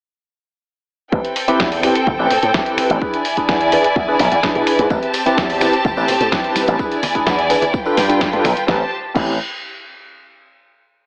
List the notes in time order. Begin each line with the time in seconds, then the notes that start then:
1.12 A1 C4 E4 G4 A4 B4 G5, kick
1.25 closed hi-hat
1.36 open hi-hat
1.48 C4 E4 G4 B4, muted slap bass stroke, closed hi-hat
1.60 E2, kick, snare
1.72 open hi-hat
1.83 C4 E4 G4 B4, finger snap, open hi-hat
1.95 closed hi-hat
2.07 G1, kick
2.19 A1 C4 E4 G4 B4
2.31 A2, open hi-hat
2.43 A2, closed hi-hat
2.54 C4 E4 G4 B4, kick, snare
2.66 closed hi-hat
2.78 finger snap, muted slap bass stroke, open hi-hat
2.90 A1, closed hi-hat
3.01 D4 E4 G#4 B4 D5 G#5, kick
3.14 closed hi-hat
3.25 open hi-hat
3.37 D4 E4 G#4 B4, muted slap bass stroke, kick, closed hi-hat
3.49 E2, kick, snare
3.61 closed hi-hat
3.72 D4 E4 G#4 B4, open hi-hat
3.84 closed hi-hat
3.96 E2, kick
4.08 D4 E4 G#4 B4
4.19 B1, snare, open hi-hat
4.32 E2, closed hi-hat
4.43 D4 E4 G#4 B4, kick, snare
4.55 B2, closed hi-hat
4.67 finger snap, muted slap bass stroke, open hi-hat
4.79 G#2, closed hi-hat
4.90 A1 C4 E4 G4 B4 A5, kick, tambourine
5.03 closed hi-hat
5.13 open hi-hat, tambourine
5.26 C4 E4 G4 B4, muted slap bass stroke, closed hi-hat, tambourine
5.38 E2, kick, snare, tambourine
5.50 open hi-hat
5.61 C4 E4 G4 B4, finger snap, open hi-hat, tambourine
5.73 closed hi-hat, tambourine
5.85 G1, kick, tambourine
5.97 A1 C4 E4 G4 B4, tambourine
6.08 A2, open hi-hat, tambourine
6.20 A2, closed hi-hat, tambourine
6.32 C4 E4 G4 B4, kick, snare, tambourine
6.44 closed hi-hat
6.56 finger snap, muted slap bass stroke, open hi-hat, tambourine, high conga
6.68 A1, closed hi-hat, tambourine
6.79 D4 E4 G#4 B4 D5 G#5, kick, tambourine
6.91 closed hi-hat, tambourine
7.03 open hi-hat, tambourine, low conga
7.15 D4 E4 G#4 B4, muted slap bass stroke, kick, closed hi-hat, tambourine
7.27 E2, kick, snare, tambourine
7.39 closed hi-hat
7.50 D4 E4 G#4 B4, open hi-hat, tambourine
7.62 closed hi-hat, tambourine, low conga
7.74 F4 B4 G5, kick, tambourine
7.85 D4 F4 A4 B4, tambourine
7.97 G2, snare, open hi-hat, tambourine
8.09 D4 F4 A4 B4, closed hi-hat, tambourine
8.21 kick, snare, tambourine
8.33 G2 D4 F4 A4 B4, closed hi-hat
8.44 B1, finger snap, open hi-hat, tambourine, high conga, low conga
8.57 closed hi-hat, tambourine
8.67 A1 C4 E4 G4 B4 C5 A5, kick, snare
9.14 A1 C4 E4 G4 B4, kick, crash